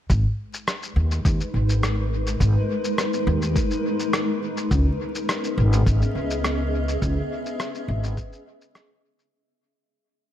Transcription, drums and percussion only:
0.10 kick, shaker
0.54 shaker
0.68 cross-stick, shaker
0.83 shaker
1.11 shaker
1.25 kick, shaker
1.41 shaker
1.69 shaker
1.83 cross-stick, shaker
2.27 shaker
2.40 kick, shaker
2.85 shaker
2.98 cross-stick, shaker
3.13 shaker
3.42 shaker
3.56 kick, shaker
3.71 shaker
4.00 shaker
4.13 cross-stick, shaker
4.57 shaker
4.71 kick, shaker
5.15 shaker
5.29 cross-stick, shaker
5.44 shaker
5.73 shaker
5.87 kick, shaker
6.02 shaker
6.31 shaker
6.44 cross-stick, shaker
6.88 shaker
7.02 kick, shaker
7.46 shaker
7.60 cross-stick, shaker
7.75 shaker
8.04 shaker
8.17 kick, shaker
8.33 shaker
8.61 shaker
8.75 cross-stick, shaker
9.19 shaker

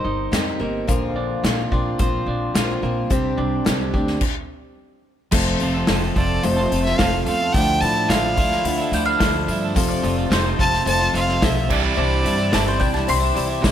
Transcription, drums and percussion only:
0.33 snare, closed hi-hat
0.89 kick, closed hi-hat
1.45 snare, closed hi-hat
1.72 kick
1.99 kick, closed hi-hat
2.55 snare, closed hi-hat
3.10 kick, closed hi-hat
3.66 snare, closed hi-hat
3.94 kick
4.07 snare
4.21 kick, crash
5.32 kick, crash
5.60 open hi-hat
5.87 snare, open hi-hat
6.16 kick, open hi-hat
6.43 open hi-hat
6.72 open hi-hat
6.86 snare
6.99 kick, snare, open hi-hat
7.26 open hi-hat
7.54 kick, open hi-hat
7.82 open hi-hat
8.10 snare, open hi-hat
8.37 kick, open hi-hat
8.52 snare
8.65 open hi-hat
8.93 open hi-hat
9.20 kick, snare, open hi-hat
9.48 open hi-hat
9.76 kick, open hi-hat
10.04 open hi-hat
10.32 snare, open hi-hat
10.59 kick, open hi-hat
10.73 snare
10.87 open hi-hat
11.15 open hi-hat
11.29 snare
11.42 kick, snare, open hi-hat
11.70 kick, crash
12.26 open hi-hat
12.53 snare, open hi-hat
12.81 kick, open hi-hat
12.95 snare
13.09 open hi-hat
13.36 open hi-hat
13.64 kick, snare, open hi-hat

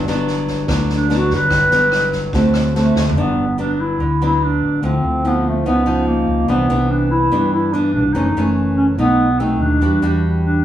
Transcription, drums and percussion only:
0.07 snare
0.27 snare
0.47 kick, snare
0.68 kick, cross-stick, snare
0.89 snare
1.10 snare
1.30 kick, snare
1.50 kick, cross-stick, snare
1.71 snare
1.92 cross-stick, snare
2.12 kick, snare
2.33 kick, snare
2.54 cross-stick, snare
2.75 snare
2.96 snare
3.09 floor tom

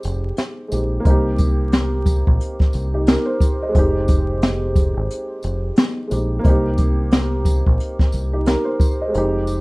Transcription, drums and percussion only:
0.03 closed hi-hat, tambourine
0.37 snare, closed hi-hat
0.72 closed hi-hat, tambourine
1.05 kick, closed hi-hat
1.38 kick, closed hi-hat, tambourine
1.72 snare, closed hi-hat
2.06 kick, closed hi-hat, tambourine
2.27 kick
2.41 closed hi-hat
2.60 kick, snare
2.73 closed hi-hat, tambourine
3.07 snare, closed hi-hat
3.40 kick, closed hi-hat, tambourine
3.75 kick, closed hi-hat
4.08 kick, closed hi-hat, tambourine
4.42 snare, closed hi-hat
4.76 kick, closed hi-hat, tambourine
5.10 closed hi-hat
5.43 closed hi-hat, tambourine
5.76 snare, closed hi-hat
6.11 closed hi-hat, tambourine
6.45 kick, closed hi-hat
6.78 kick, closed hi-hat, tambourine
7.11 snare, closed hi-hat
7.45 kick, closed hi-hat, tambourine
7.67 kick
7.80 closed hi-hat
7.99 kick, snare
8.12 closed hi-hat, tambourine
8.46 snare, closed hi-hat
8.80 kick, closed hi-hat, tambourine
9.14 closed hi-hat
9.47 closed hi-hat, tambourine

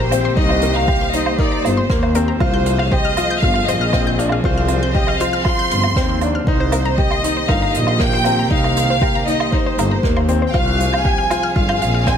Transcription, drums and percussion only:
0.11 closed hi-hat, low woodblock
0.37 kick
0.49 low woodblock
0.62 closed hi-hat
0.88 kick, low woodblock
1.13 closed hi-hat
1.26 low woodblock
1.39 kick
1.65 closed hi-hat, low woodblock
1.90 kick, cross-stick
2.03 low woodblock
2.15 closed hi-hat
2.40 kick, low woodblock
2.66 closed hi-hat
2.79 low woodblock
2.92 kick
3.17 closed hi-hat, low woodblock
3.43 kick
3.54 low woodblock
3.68 closed hi-hat
3.93 kick, cross-stick, low woodblock
4.19 closed hi-hat
4.29 low woodblock
4.44 kick
4.68 closed hi-hat, low woodblock
4.95 kick
5.07 low woodblock
5.20 closed hi-hat
5.45 kick, low woodblock
5.71 closed hi-hat
5.84 low woodblock
5.96 kick, cross-stick
6.21 closed hi-hat, low woodblock
6.47 kick
6.72 closed hi-hat, low woodblock
6.98 kick
7.11 low woodblock
7.24 closed hi-hat
7.49 kick, low woodblock
7.74 closed hi-hat
7.87 low woodblock
8.00 kick, cross-stick
8.24 closed hi-hat, low woodblock
8.51 kick
8.64 low woodblock
8.76 closed hi-hat
9.02 kick, low woodblock
9.28 closed hi-hat
9.40 low woodblock
9.52 kick
9.78 closed hi-hat, low woodblock
10.03 kick, cross-stick
10.17 low woodblock
10.28 closed hi-hat
10.54 kick, low woodblock
10.80 closed hi-hat
10.94 low woodblock
11.05 kick
11.30 closed hi-hat, low woodblock
11.56 kick
11.69 low woodblock
11.82 closed hi-hat
12.07 kick, cross-stick, low woodblock

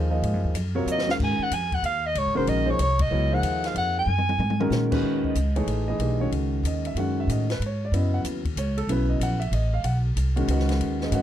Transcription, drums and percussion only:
0.23 ride
0.55 hi-hat pedal, ride
0.87 hi-hat pedal
0.99 snare
1.09 snare
1.20 kick, crash
1.51 hi-hat pedal, ride
1.72 kick, ride
1.84 ride
2.15 ride
2.47 ride
2.79 hi-hat pedal, ride
2.99 kick, ride
3.43 hi-hat pedal, ride
3.64 snare, ride
3.76 ride
4.08 mid tom
4.18 mid tom
4.29 mid tom
4.40 mid tom
4.50 mid tom
4.61 mid tom
4.71 snare, hi-hat pedal
4.92 kick, crash
5.24 kick
5.35 hi-hat pedal, ride
5.56 ride
5.68 ride
6.00 ride
6.32 ride
6.65 hi-hat pedal, ride
6.85 ride
6.97 ride
7.30 hi-hat pedal, ride
7.50 snare, ride
7.62 ride
7.94 ride
8.25 hi-hat pedal, ride
8.45 kick, ride
8.57 hi-hat pedal, ride
8.78 ride
8.89 ride
9.21 hi-hat pedal, ride
9.42 ride
9.53 ride
9.84 ride
10.17 hi-hat pedal, ride
10.37 ride
10.48 ride
10.60 snare
10.69 snare, ride
10.81 ride
11.01 snare
11.12 hi-hat pedal, ride

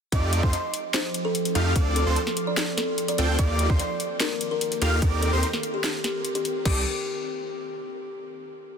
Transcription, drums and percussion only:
0.12 kick, closed hi-hat, ride
0.33 closed hi-hat
0.43 kick
0.53 closed hi-hat
0.74 closed hi-hat
0.94 snare, closed hi-hat, ride
1.14 closed hi-hat
1.35 closed hi-hat
1.45 closed hi-hat
1.55 closed hi-hat
1.76 kick, closed hi-hat, ride
1.96 closed hi-hat
2.16 closed hi-hat
2.27 snare
2.37 closed hi-hat
2.57 snare, closed hi-hat, ride
2.78 snare, closed hi-hat
2.98 closed hi-hat
3.08 closed hi-hat
3.18 closed hi-hat
3.39 kick, closed hi-hat, ride
3.59 closed hi-hat
3.70 kick
3.79 closed hi-hat
4.00 closed hi-hat
4.20 snare, closed hi-hat, ride
4.41 closed hi-hat
4.61 closed hi-hat
4.72 closed hi-hat
4.82 closed hi-hat
5.02 kick, closed hi-hat, ride
5.22 closed hi-hat
5.43 closed hi-hat
5.53 snare
5.63 closed hi-hat
5.84 snare, closed hi-hat, ride
6.04 snare, closed hi-hat
6.25 closed hi-hat
6.35 closed hi-hat
6.45 closed hi-hat
6.65 kick, crash

